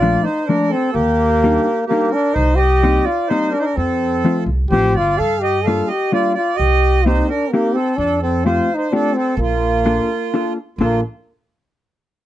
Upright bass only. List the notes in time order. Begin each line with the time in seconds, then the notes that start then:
Already playing: A#1
0.95 D#2
2.36 C2
3.77 F2
4.46 C2
4.70 A1
4.94 G1
5.20 G2
6.59 C2
7.98 F2
9.37 A#1
10.78 A#1